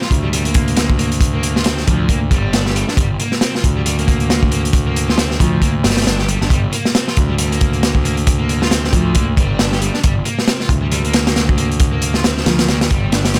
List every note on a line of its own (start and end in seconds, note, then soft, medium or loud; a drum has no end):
0.02 0.10 F4 medium
0.02 snare medium
0.11 1.84 D2 medium
0.11 kick loud
0.11 closed hi-hat medium
0.24 0.28 G3 medium
0.33 0.42 G3 medium
0.33 closed hi-hat medium
0.45 0.88 A#3 medium
0.45 closed hi-hat soft
0.54 kick loud
0.54 closed hi-hat medium
0.68 closed hi-hat soft
0.77 snare loud
0.77 closed hi-hat medium
0.90 kick loud
0.99 1.08 A#3 loud
0.99 closed hi-hat medium
1.12 closed hi-hat medium
1.21 kick loud
1.21 closed hi-hat loud
1.34 1.55 A#3 medium
1.43 closed hi-hat medium
1.56 1.64 F4 medium
1.56 snare medium
1.64 1.86 C4 medium
1.64 snare loud
1.64 closed hi-hat medium
1.78 snare soft
1.87 2.28 D2 medium
1.87 2.08 F3 medium
1.87 kick loud
1.87 closed hi-hat medium
2.09 2.18 A#3 loud
2.09 kick loud
2.09 closed hi-hat medium
2.31 2.83 G1 loud
2.31 2.53 G3 medium
2.31 kick loud
2.31 closed hi-hat medium
2.53 2.65 D4 medium
2.53 snare loud
2.53 closed hi-hat loud
2.66 2.73 G4 medium
2.66 snare medium
2.76 2.85 G3 medium
2.76 closed hi-hat medium
2.88 2.92 D4 medium
2.88 snare soft
2.97 3.15 G1 loud
2.97 3.07 G3 medium
2.97 kick loud
2.97 closed hi-hat medium
3.20 3.32 A#3 medium
3.20 closed hi-hat medium
3.32 snare medium
3.41 3.53 C4 loud
3.41 snare loud
3.41 closed hi-hat medium
3.55 3.63 F4 medium
3.55 snare medium
3.64 5.37 D2 medium
3.64 kick loud
3.64 closed hi-hat medium
3.77 3.81 G3 medium
3.86 3.95 G3 medium
3.86 closed hi-hat medium
3.99 4.42 A#3 medium
3.99 closed hi-hat soft
4.08 kick loud
4.08 closed hi-hat medium
4.20 closed hi-hat soft
4.30 snare loud
4.30 closed hi-hat medium
4.43 kick loud
4.52 4.61 A#3 loud
4.52 closed hi-hat medium
4.65 closed hi-hat soft
4.73 kick loud
4.73 closed hi-hat medium
4.87 5.08 A#3 medium
4.96 closed hi-hat medium
5.09 5.17 F4 medium
5.09 snare medium
5.18 5.39 C4 medium
5.18 snare loud
5.18 closed hi-hat medium
5.31 snare medium
5.40 5.81 D2 medium
5.40 5.61 F3 medium
5.40 kick loud
5.40 closed hi-hat medium
5.62 5.71 A#3 loud
5.62 kick loud
5.62 closed hi-hat medium
5.84 6.06 G1 loud
5.84 6.05 G3 medium
5.84 snare loud
5.84 closed hi-hat medium
5.90 snare medium
5.90 closed hi-hat medium
5.97 snare loud
5.97 closed hi-hat medium
6.02 snare medium
6.02 closed hi-hat medium
6.07 6.37 G1 loud
6.07 6.19 D4 medium
6.07 snare loud
6.07 closed hi-hat medium
6.19 6.26 G4 medium
6.19 snare medium
6.28 6.37 G3 medium
6.28 closed hi-hat medium
6.41 6.48 G1 loud
6.41 6.45 D4 medium
6.41 snare soft
6.50 6.68 G1 loud
6.50 6.59 G3 medium
6.50 kick loud
6.50 closed hi-hat medium
6.72 6.84 A#3 medium
6.72 closed hi-hat medium
6.85 snare medium
6.95 7.06 C4 loud
6.95 snare loud
6.95 closed hi-hat loud
7.07 7.16 F4 medium
7.07 snare medium
7.17 8.90 D2 medium
7.17 kick medium
7.17 closed hi-hat medium
7.29 7.33 G3 medium
7.38 7.48 G3 medium
7.38 closed hi-hat medium
7.51 7.94 A#3 medium
7.51 closed hi-hat soft
7.61 kick loud
7.61 closed hi-hat medium
7.73 closed hi-hat soft
7.83 snare loud
7.83 closed hi-hat loud
7.95 kick loud
8.05 8.14 A#3 loud
8.05 closed hi-hat medium
8.17 closed hi-hat soft
8.27 kick loud
8.27 closed hi-hat loud
8.40 8.60 A#3 medium
8.49 closed hi-hat medium
8.62 8.70 F4 medium
8.62 snare medium
8.71 8.92 C4 medium
8.71 snare loud
8.71 closed hi-hat medium
8.84 snare medium
8.93 9.34 D2 medium
8.93 9.14 F3 medium
8.93 kick medium
8.93 closed hi-hat medium
9.15 9.24 A#3 loud
9.15 kick loud
9.15 closed hi-hat loud
9.37 9.89 G1 loud
9.37 9.58 G3 medium
9.37 kick loud
9.37 closed hi-hat medium
9.59 9.71 D4 medium
9.59 snare loud
9.59 closed hi-hat medium
9.72 9.79 G4 medium
9.72 snare medium
9.81 9.90 G3 medium
9.81 closed hi-hat medium
9.94 9.98 D4 medium
9.94 snare soft
10.03 10.22 G1 loud
10.03 10.12 G3 medium
10.03 kick loud
10.03 closed hi-hat loud
10.25 10.37 A#3 medium
10.25 closed hi-hat medium
10.39 snare medium
10.47 10.59 C4 loud
10.47 snare loud
10.47 closed hi-hat medium
10.60 10.69 F4 medium
10.60 snare medium
10.69 12.42 D2 medium
10.69 kick loud
10.69 closed hi-hat medium
10.82 10.86 G3 medium
10.92 11.01 G3 medium
10.92 closed hi-hat medium
11.04 11.47 A#3 medium
11.04 closed hi-hat soft
11.13 snare loud
11.13 closed hi-hat medium
11.27 snare loud
11.27 closed hi-hat medium
11.36 snare loud
11.36 closed hi-hat medium
11.49 kick loud
11.58 11.67 A#3 loud
11.58 closed hi-hat medium
11.72 closed hi-hat soft
11.80 kick loud
11.80 closed hi-hat medium
11.93 12.13 A#3 medium
12.02 closed hi-hat medium
12.14 12.23 F4 medium
12.14 snare medium
12.24 12.45 C4 medium
12.24 snare loud
12.24 closed hi-hat medium
12.37 snare soft
12.46 12.87 D2 medium
12.46 12.67 F3 medium
12.46 snare loud
12.46 closed hi-hat medium
12.59 snare loud
12.59 closed hi-hat medium
12.68 12.77 A#3 loud
12.68 snare loud
12.68 closed hi-hat medium
12.81 snare loud
12.81 closed hi-hat medium
12.90 13.40 G1 loud
12.90 13.11 G3 medium
12.90 kick loud
12.90 closed hi-hat medium
13.12 13.24 D4 medium
13.12 snare loud
13.12 closed hi-hat medium
13.25 13.32 G4 medium
13.25 snare loud
13.25 closed hi-hat medium
13.34 13.40 G3 medium
13.34 snare loud
13.34 closed hi-hat medium